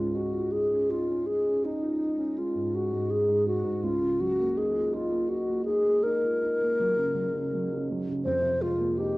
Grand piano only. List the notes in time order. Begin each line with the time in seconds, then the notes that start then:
Already playing: C#2 G#2 G#3 C#4
0.14 D#4
0.33 F4
0.52 D#4
0.71 C#4
0.90 D#4
1.09 C#4
1.29 D#4
1.47 C#4
1.65 D#4
1.82 F4
2.00 D#4
2.18 C#4
2.37 G#3
2.55 G#2
2.75 G#3
2.92 G#2
3.09 G#3
3.28 G#2
3.47 G#3
3.64 G#2
3.83 C#2
4.01 C#3
4.18 F#3
4.39 A#3
4.56 D#4
4.74 F4
4.92 D#4
5.11 A#3
5.30 D#4
5.49 A#3
5.67 D#4
5.85 A#3
6.04 D#4
6.24 F4
6.42 D#4
6.62 A#3
6.80 F#3
6.97 C#3
7.15 F#3
7.34 C#3
7.53 F#3
7.73 C#3
7.90 F#3
8.08 C#3
8.25 F2
8.41 C3
8.60 G#3
8.78 A#3
8.99 D#4